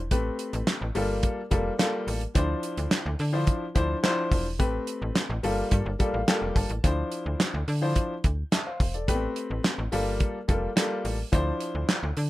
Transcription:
Already playing: E1
0.11 A1 A3 C4 G4 B4, kick, closed hi-hat
0.39 closed hi-hat
0.53 A1, closed hi-hat
0.67 snare, clap, closed hi-hat
0.81 A1
0.95 G1 G3 A#3 F4 A4, open hi-hat
1.23 kick, closed hi-hat
1.51 F1 G3 A#3 F4 A4, kick, closed hi-hat
1.79 G3 A#3 F4 A4, snare, clap, closed hi-hat
2.07 A1, open hi-hat
2.21 closed hi-hat
2.35 D2 F3 D4 E4 C5, kick, closed hi-hat
2.63 closed hi-hat
2.77 D2, closed hi-hat
2.91 snare, clap, closed hi-hat
3.06 D2
3.19 D3, open hi-hat
3.33 F3 D4 E4 C5
3.47 kick, closed hi-hat
3.75 D2 F3 D4 E4 C5, kick, closed hi-hat
4.03 F3 D4 E4 C5, snare, clap, closed hi-hat
4.31 E1, kick, open hi-hat
4.59 A1 A3 C4 G4 B4, kick, closed hi-hat
4.87 closed hi-hat
5.02 A1
5.15 snare, clap, closed hi-hat
5.30 A1
5.43 G1 G3 A#3 F4 A4, open hi-hat
5.71 G2, kick, closed hi-hat
5.86 G1
5.99 G3 A#3 F4 A4 D5, kick, closed hi-hat
6.14 A1 F5
6.28 G3 A#3 F4 A4 G5, snare, clap, closed hi-hat
6.42 F1
6.56 G1 A5, kick, open hi-hat
6.70 A1, closed hi-hat
6.84 D2 F3 D4 E4 C5, kick, closed hi-hat
7.12 closed hi-hat
7.26 D2
7.40 snare, clap, closed hi-hat
7.54 D2
7.68 D3, open hi-hat
7.82 F3 D4 E4 C5
7.96 kick, closed hi-hat
8.24 D2, kick, closed hi-hat
8.52 E5 A5, snare, clap, closed hi-hat
8.66 C5 F5
8.80 E1, kick, open hi-hat
8.94 A4 D5, closed hi-hat
9.08 A1 A3 B3 G4 B4, kick, closed hi-hat
9.15 C4
9.36 closed hi-hat
9.50 A1
9.64 snare, clap, closed hi-hat
9.78 A1
9.92 G1 G3 A#3 F4 A4, open hi-hat
10.20 kick, closed hi-hat
10.48 F1 G3 A#3 F4 A4, kick, closed hi-hat
10.76 G3 A#3 F4 A4, snare, clap, closed hi-hat
11.05 A1, open hi-hat
11.32 D2 F3 D4 E4 C5, kick, closed hi-hat
11.60 closed hi-hat
11.75 D2
11.89 snare, clap, closed hi-hat
12.03 D2
12.17 D3, open hi-hat

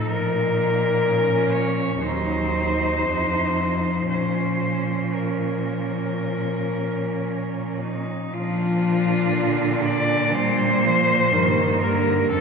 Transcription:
Already playing: A2 F3 D#4
0.09 A#2 A#4
1.04 C#4
1.52 C#5
2.01 D#2 F#3 D#4 C5
3.03 F2 F3
4.09 A#2 C#4 C5
5.14 A#4
7.82 D#4
8.33 A#2 F3 D4 F4
9.33 D3
9.84 D5
10.32 G3 A#3 C5
10.84 F3
11.32 G2 D#3 A#3
11.80 D3 A#4
12.30 F2 D3 C4 A4

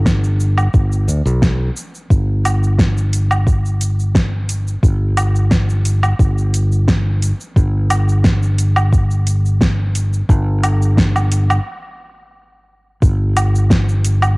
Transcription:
Already playing: G1
0.06 kick, snare, shaker
0.24 shaker
0.40 shaker
0.58 low woodblock, shaker
0.74 G1, kick, shaker
0.92 shaker
1.08 D2, shaker
1.26 B1, shaker
1.42 kick, snare, shaker
1.77 shaker
1.95 shaker
2.10 G1, kick, shaker
2.45 closed hi-hat, low woodblock, shaker
2.64 shaker
2.79 kick, snare, shaker
2.97 shaker
3.13 closed hi-hat, shaker
3.31 low woodblock, shaker
3.47 kick, shaker
3.66 shaker
3.81 closed hi-hat, shaker
4.00 shaker
4.15 kick, snare, shaker
4.49 closed hi-hat, shaker
4.68 shaker
4.83 G1, kick, shaker
5.17 closed hi-hat, low woodblock, shaker
5.36 shaker
5.51 kick, snare, shaker
5.70 shaker
5.85 closed hi-hat, shaker
6.03 low woodblock, shaker
6.19 G1, kick, shaker
6.38 shaker
6.54 closed hi-hat, shaker
6.72 shaker
6.88 kick, snare, shaker
7.22 closed hi-hat, shaker
7.40 shaker
7.56 G1, kick, shaker
7.90 closed hi-hat, low woodblock, shaker
8.09 shaker
8.24 kick, snare, shaker
8.43 shaker
8.58 closed hi-hat, shaker
8.76 low woodblock, shaker
8.93 kick, shaker
9.11 shaker
9.27 closed hi-hat, shaker
9.46 shaker
9.61 kick, snare, shaker
9.95 closed hi-hat, shaker
10.13 shaker
10.29 G1, kick, shaker
10.63 closed hi-hat, low woodblock, shaker
10.82 shaker
10.97 kick, snare, shaker
11.16 low woodblock, shaker
11.32 closed hi-hat, shaker
11.50 low woodblock, shaker
13.02 G1, kick, shaker
13.37 closed hi-hat, low woodblock, shaker
13.55 shaker
13.70 kick, snare, shaker
13.89 shaker
14.04 closed hi-hat, shaker
14.22 low woodblock, shaker

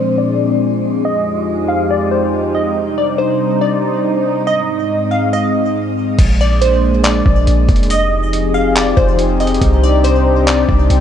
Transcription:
Already playing: A#2 F3 G#3 C4 D4 C5
0.18 D5
1.04 F2 F3 D#4 G4 D#5
1.68 F5
1.91 D5
2.11 C5
2.55 D#5
2.76 C3 G3 D4 C5
2.98 D5
3.18 C5
3.61 D5
4.47 G#2 G#3 C4 D#5
5.11 F5
5.33 D#5
6.19 A#1 G#3 A#3 D4, kick, closed hi-hat, crash
6.41 D5
6.61 C5, closed hi-hat
7.04 D5, clap, closed hi-hat
7.26 A#1, kick
7.47 A#1, closed hi-hat
7.69 F1, kick, closed hi-hat
7.76 closed hi-hat
7.83 closed hi-hat
7.90 F3 C4 D#4 G4 G#4 D#5, closed hi-hat
8.33 closed hi-hat
8.54 F5
8.76 D5, clap, closed hi-hat
8.97 F1 C5, kick
9.19 closed hi-hat
9.40 D#5, closed hi-hat
9.47 closed hi-hat
9.54 closed hi-hat
9.61 C2 C3 D4, kick, closed hi-hat
9.84 D5
10.04 C5, closed hi-hat
10.47 D5, clap, closed hi-hat
10.69 C2, kick
10.90 C2, closed hi-hat

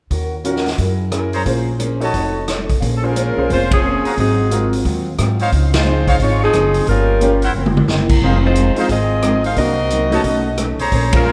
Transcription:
0.10 D#2 D#3 C#4 F#4 A#4, kick, open hi-hat
0.44 D#3 C#4 F4 F#4 A#4, closed hi-hat
0.56 snare
0.66 snare, open hi-hat
0.78 F#2 F#3 E4 G#4 A#4, kick, open hi-hat
1.11 F#3 C#4 E4 G#4 A#4, cross-stick, closed hi-hat
1.33 G#4 C5 C#5 A#5, open hi-hat
1.45 A#1 A#3 C#4 F4 G#4 C5, kick, open hi-hat
1.79 A#3 C#4 G#4 C5, closed hi-hat
2.00 D#4 F#4 A4 C#5 D#5 A5, open hi-hat
2.13 F1 F3 D#4 A4 C#5, kick, open hi-hat
2.48 F3 D#4 A4 C#5, cross-stick, snare, closed hi-hat
2.69 kick, open hi-hat
2.82 A#1 A#3 C#4 G#4 C5, kick, open hi-hat
2.97 A4
3.02 G#3 C#4 F4 G#4 A#4 C5
3.15 A#3 C#4 G#4 C5, closed hi-hat
3.37 B1 C#4 F4 G#4 C5
3.50 F1 G#3 A#3 C#4 F4 G#4 C5, kick, open hi-hat
3.71 F3 C4 C#4 G#4, kick, ride
3.83 A#3 C#4 G#4 C5
4.05 F#4 C5 F5 A#5, muted upright bass stroke, open hi-hat
4.17 G#1 G#2 F#3 C4 D#4 F4 G#4, kick, open hi-hat
4.50 G#2 F#3 C4 F4 F#4 A#4, closed hi-hat
4.73 open hi-hat
4.85 D#2 G#2 F#3 C4 F4, kick, open hi-hat
5.18 G#2 F#3 C4 F4, cross-stick, closed hi-hat
5.39 D#4 C5 C#5 F5, open hi-hat
5.52 C#2 C#3 F3 C4 D#4, kick, open hi-hat
5.74 G#3 D#4 F4 C5, snare, ride
5.86 C#3 F3 C4 D#4
6.07 D#4 C5 C#5 F5, kick, open hi-hat
6.19 G#1 C#3 F3 G#3 C4 D#4 F4 C#5, kick, open hi-hat
6.44 F3 C4 D#4 G#4
6.53 F#1 C#3 F3 C4 D#4, cross-stick, closed hi-hat
6.74 open hi-hat
6.87 G1 G2 F3 G3 A#3 C#4 F4 A#4, kick, open hi-hat
7.20 G2 F3 A#3 C#4 F4 G4, closed hi-hat
7.42 E4 A#4 C5 F#5, open hi-hat
7.54 F#1 F#2 E3 A#3 C4
7.66 mid tom
7.77 mid tom
7.88 F#1 F#2 E3 A#3 C4, snare
8.09 kick, crash
8.22 F1 F2 D#3 G#3 C4 D#4 G#4 C5 F5, kick
8.45 G#3 D#4 F4 C5
8.55 F2 D#3 G#3 C4, closed hi-hat
8.76 G#3 C4 D#4 F4 G#4 C5 F5, muted upright bass stroke, open hi-hat
8.89 G#1 F2 D#3 G#3 C4 F4 G#4 D#5, kick, open hi-hat
9.22 F2 D#3 G#3 C4 D#4 G#4, cross-stick, closed hi-hat
9.44 D#4 G#4 C5 F5, open hi-hat
9.56 C2 C3 F#3 A#3 C4 D4 D#4 F#4 A#4 D#5, kick, open hi-hat
9.90 C3 F#3 A#3 D#4, closed hi-hat
10.11 A3 C#4 D#4 F#4 B4 C#5 A5, open hi-hat
10.24 B1 B2 A3 C#4 D#4, kick, open hi-hat
10.57 B2 A3 C#4 D#4, cross-stick, closed hi-hat
10.78 B1 G#4 C5 C#5 A#5, open hi-hat
10.91 A#1 A#3 C#4 G#4 C5, kick, open hi-hat
11.13 G#3 C#4 F4 A#4 C5, kick, ride
11.25 A#3 C#4 G#4 C5 C#5 A#5

